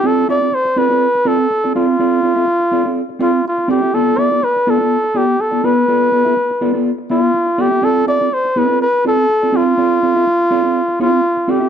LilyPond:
<<
  \new Staff \with { instrumentName = "Flugelhorn" } { \time 4/4 \key d \dorian \tempo 4 = 123 a'8 d''8 c''8 b'4 a'4 f'8~ | f'2~ f'8 f'8 f'8 g'8 | a'8 d''8 b'8 a'4 g'8 a'8 b'8~ | b'2 r8 f'4 g'8 |
a'8 d''8 c''8 b'8 b'8 a'4 f'8~ | f'2~ f'8 f'4 g'8 | }
  \new Staff \with { instrumentName = "Clean electric guitar" } { \time 4/4 \key d \dorian <c' f' a' d''>8 <c' f' a' e''>16 <c' f' a' d''>16 r8 <c' f' a' d''>16 <c' f' a' d''>16 r8 <c' f' a' d''>8 r16 <c' f' a' d''>16 <c' f' a' d''>8 | <c' f' a' d''>8 <c' f' a' d''>16 <c' f' a' e''>16 r8 <c' f' a' d''>16 a'16 r8 <c' f' a' d''>8 r8 <c' f' a' d''>16 <f' a' e''>16 | <b f' a' d''>8 <b f' a' e''>16 <f' d''>16 r8 <b f' a' d''>16 <b f' d''>16 r8 <b f' a' d''>8 r16 <b f' a' d''>16 <b f' a' d''>8 | <b f' a' d''>8 <b f' a' d''>16 <b f' a' e''>16 r8 <b f' a' d''>16 <b f' a' d''>16 r8 <b f' a' d''>8 r8 <b f' a' d''>16 <b f' a' e''>16 |
<c' f' a' d''>8 <c' f' a' e''>16 <c' f' a' d''>16 r8 <c' f' a' d''>16 <c' f' a' d''>16 r8 <c' f' a' d''>8 r16 <c' f' a' d''>16 <c' f' a' d''>8 | <c' f' a' d''>8 <c' f' a' d''>16 <c' f' a' e''>16 r8 <c' f' a' d''>16 <c' f'>16 r8 <c' f' a' d''>8 r8 <c' f' a' d''>16 <c' f' a' e''>16 | }
>>